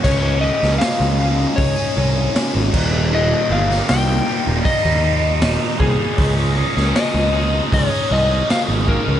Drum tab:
CC |x-------------x-|----------------|----------------|
HH |----o---o---o---|----o---o---o---|o---o---o---o---|
SD |---oo-------o---|---oo-------o---|---oo-------o---|
BD |o-------o-----o-|--------o-----o-|o-------o-----o-|